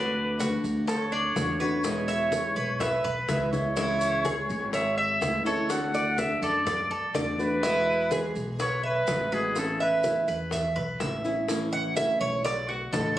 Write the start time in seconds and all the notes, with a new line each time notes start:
Already playing: D2 D3 A3 D4 F#4 B4
0.16 high conga
0.39 D3 A3 D4 F#4, high bongo, high conga, maracas
0.64 D2, high conga, maracas
0.88 A4 C#5, muted nylon-string guitar stroke, high bongo, high conga, maracas
1.12 D4, high conga
1.36 E2 D3 A3 D4 F#4, high bongo, low bongo, high conga, maracas
1.60 A3 D4 F#4 B4, maracas
1.84 B2 E3 G#3 B3 E4 C#5, high bongo, high conga, maracas
2.08 E5, high bongo, high conga, maracas
2.32 E3 G#3 B3 E4, high bongo, high conga, maracas
2.56 B1 B4, high bongo, high conga, maracas
2.80 B4 E5, muted nylon-string guitar stroke, high bongo, high conga, low conga, maracas
3.04 B1 B4, high conga, low conga
3.28 C#2 E3 G#3 B3 E4 E5, high bongo, low bongo, high conga, maracas
3.52 E3 G#3 B3 E4 C#5, high bongo, high conga, maracas
3.77 C#3 E3 G#3 C#4 E4, high bongo, maracas
4.01 high conga, maracas
4.25 E3 G#3 C#4 E4 G#4, high bongo, high conga, maracas
4.49 G#1, high conga, maracas
4.73 C#5 E5, muted nylon-string guitar stroke, high bongo, high conga, maracas
4.98 E5, high conga
5.21 D2 E3 G#3 C#4 E4, high bongo, low bongo, high conga, maracas
5.45 E3 G#3 C#4 E4 A4 C#5, high conga, maracas
5.70 D3 A3 D4 F#4 F#5, high bongo, high conga, maracas
5.94 D5, high bongo, high conga, maracas
6.18 D3 A3 D4 F#4 E5, high bongo, high conga, maracas
6.42 F#2 A4 D5, high bongo, high conga, maracas
6.66 D5, muted nylon-string guitar stroke, high bongo, high conga, low conga, maracas
6.90 F#2 A4, high conga
7.14 E2 D3 A3 D4 F#4 D5, high bongo, low bongo, high conga, maracas
7.39 A3 D4 F#4 B4, high bongo, maracas
7.63 B2 E3 G#3 B3 E4 F#4, high bongo, high conga, maracas
7.87 high conga
8.11 E3 G#3 B3 F#4 G#4, high bongo, high conga, maracas
8.35 B1, high conga, maracas
8.59 B4 C#5, muted nylon-string guitar stroke, high bongo, high conga, maracas
8.83 B4 E5, high conga
9.07 A1 E3 G#3 B3 F#4, high bongo, low bongo, high conga, maracas
9.32 E3 G#3 B3 F#4 G#4 B4, high conga, maracas
9.56 E3 B3 C#4 E4 A4, high bongo, high conga, maracas
9.80 B4 E5, high bongo, high conga
10.04 E3 B3 C#4 E4, high bongo, high conga, maracas
10.28 E2 B4, high bongo, high conga, maracas
10.51 E5, muted nylon-string guitar stroke, high bongo, high conga, low conga, maracas
10.76 B1 B4, high conga, low conga
11.00 A1 E3 B3 C#4 E4 E5, high bongo, low bongo, high conga, maracas
11.24 B3 C#4 E4, high bongo, maracas
11.48 E3 A3 C#4 E4, high bongo, high conga, maracas
11.73 F#5, high conga
11.96 E3 A3 C#4 E4 E5, high bongo, high conga, maracas
12.21 B1 C#5, high conga, maracas
12.44 D5, muted nylon-string guitar stroke, high bongo, high conga, maracas
12.69 A3 B3 F#4, high conga
12.93 A1 B2 D3 A3 B3 F#4 A4, high bongo, low bongo, high conga, maracas